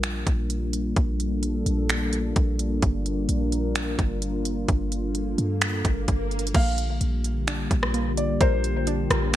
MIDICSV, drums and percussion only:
0, 0, Header, 1, 2, 480
1, 0, Start_track
1, 0, Key_signature, -2, "major"
1, 0, Tempo, 465116
1, 995, Time_signature, 4, 2, 24, 8
1, 9660, End_track
2, 0, Start_track
2, 0, Title_t, "Drums"
2, 34, Note_on_c, 9, 42, 92
2, 37, Note_on_c, 9, 26, 103
2, 137, Note_off_c, 9, 42, 0
2, 140, Note_off_c, 9, 26, 0
2, 275, Note_on_c, 9, 36, 99
2, 275, Note_on_c, 9, 42, 81
2, 378, Note_off_c, 9, 36, 0
2, 378, Note_off_c, 9, 42, 0
2, 515, Note_on_c, 9, 42, 85
2, 618, Note_off_c, 9, 42, 0
2, 756, Note_on_c, 9, 42, 78
2, 859, Note_off_c, 9, 42, 0
2, 995, Note_on_c, 9, 42, 75
2, 996, Note_on_c, 9, 36, 111
2, 1098, Note_off_c, 9, 42, 0
2, 1099, Note_off_c, 9, 36, 0
2, 1237, Note_on_c, 9, 42, 57
2, 1340, Note_off_c, 9, 42, 0
2, 1473, Note_on_c, 9, 42, 90
2, 1577, Note_off_c, 9, 42, 0
2, 1716, Note_on_c, 9, 42, 63
2, 1819, Note_off_c, 9, 42, 0
2, 1954, Note_on_c, 9, 42, 90
2, 1957, Note_on_c, 9, 26, 105
2, 2057, Note_off_c, 9, 42, 0
2, 2060, Note_off_c, 9, 26, 0
2, 2195, Note_on_c, 9, 42, 85
2, 2298, Note_off_c, 9, 42, 0
2, 2435, Note_on_c, 9, 42, 83
2, 2437, Note_on_c, 9, 36, 87
2, 2539, Note_off_c, 9, 42, 0
2, 2540, Note_off_c, 9, 36, 0
2, 2676, Note_on_c, 9, 42, 77
2, 2779, Note_off_c, 9, 42, 0
2, 2915, Note_on_c, 9, 42, 72
2, 2916, Note_on_c, 9, 36, 116
2, 3018, Note_off_c, 9, 42, 0
2, 3019, Note_off_c, 9, 36, 0
2, 3156, Note_on_c, 9, 42, 60
2, 3259, Note_off_c, 9, 42, 0
2, 3393, Note_on_c, 9, 42, 86
2, 3496, Note_off_c, 9, 42, 0
2, 3636, Note_on_c, 9, 42, 62
2, 3739, Note_off_c, 9, 42, 0
2, 3874, Note_on_c, 9, 42, 89
2, 3877, Note_on_c, 9, 26, 102
2, 3977, Note_off_c, 9, 42, 0
2, 3980, Note_off_c, 9, 26, 0
2, 4115, Note_on_c, 9, 36, 101
2, 4115, Note_on_c, 9, 42, 84
2, 4218, Note_off_c, 9, 36, 0
2, 4218, Note_off_c, 9, 42, 0
2, 4355, Note_on_c, 9, 42, 84
2, 4458, Note_off_c, 9, 42, 0
2, 4595, Note_on_c, 9, 42, 80
2, 4699, Note_off_c, 9, 42, 0
2, 4835, Note_on_c, 9, 36, 114
2, 4835, Note_on_c, 9, 42, 75
2, 4938, Note_off_c, 9, 42, 0
2, 4939, Note_off_c, 9, 36, 0
2, 5076, Note_on_c, 9, 42, 60
2, 5179, Note_off_c, 9, 42, 0
2, 5313, Note_on_c, 9, 42, 88
2, 5416, Note_off_c, 9, 42, 0
2, 5555, Note_on_c, 9, 42, 58
2, 5658, Note_off_c, 9, 42, 0
2, 5794, Note_on_c, 9, 42, 87
2, 5797, Note_on_c, 9, 26, 105
2, 5897, Note_off_c, 9, 42, 0
2, 5900, Note_off_c, 9, 26, 0
2, 6035, Note_on_c, 9, 36, 98
2, 6035, Note_on_c, 9, 42, 84
2, 6138, Note_off_c, 9, 36, 0
2, 6138, Note_off_c, 9, 42, 0
2, 6274, Note_on_c, 9, 42, 82
2, 6276, Note_on_c, 9, 36, 90
2, 6378, Note_off_c, 9, 42, 0
2, 6379, Note_off_c, 9, 36, 0
2, 6515, Note_on_c, 9, 42, 48
2, 6595, Note_off_c, 9, 42, 0
2, 6595, Note_on_c, 9, 42, 64
2, 6675, Note_off_c, 9, 42, 0
2, 6675, Note_on_c, 9, 42, 78
2, 6754, Note_off_c, 9, 42, 0
2, 6754, Note_on_c, 9, 42, 76
2, 6755, Note_on_c, 9, 36, 118
2, 6755, Note_on_c, 9, 49, 99
2, 6857, Note_off_c, 9, 42, 0
2, 6858, Note_off_c, 9, 36, 0
2, 6858, Note_off_c, 9, 49, 0
2, 6996, Note_on_c, 9, 42, 64
2, 7100, Note_off_c, 9, 42, 0
2, 7233, Note_on_c, 9, 42, 92
2, 7336, Note_off_c, 9, 42, 0
2, 7476, Note_on_c, 9, 42, 62
2, 7579, Note_off_c, 9, 42, 0
2, 7714, Note_on_c, 9, 42, 92
2, 7717, Note_on_c, 9, 26, 107
2, 7817, Note_off_c, 9, 42, 0
2, 7820, Note_off_c, 9, 26, 0
2, 7955, Note_on_c, 9, 36, 104
2, 7955, Note_on_c, 9, 42, 85
2, 8058, Note_off_c, 9, 36, 0
2, 8058, Note_off_c, 9, 42, 0
2, 8079, Note_on_c, 9, 37, 102
2, 8182, Note_off_c, 9, 37, 0
2, 8196, Note_on_c, 9, 42, 87
2, 8299, Note_off_c, 9, 42, 0
2, 8436, Note_on_c, 9, 42, 83
2, 8539, Note_off_c, 9, 42, 0
2, 8675, Note_on_c, 9, 42, 76
2, 8676, Note_on_c, 9, 36, 117
2, 8778, Note_off_c, 9, 42, 0
2, 8779, Note_off_c, 9, 36, 0
2, 8917, Note_on_c, 9, 42, 65
2, 9020, Note_off_c, 9, 42, 0
2, 9153, Note_on_c, 9, 42, 90
2, 9257, Note_off_c, 9, 42, 0
2, 9396, Note_on_c, 9, 42, 64
2, 9398, Note_on_c, 9, 37, 102
2, 9500, Note_off_c, 9, 42, 0
2, 9501, Note_off_c, 9, 37, 0
2, 9660, End_track
0, 0, End_of_file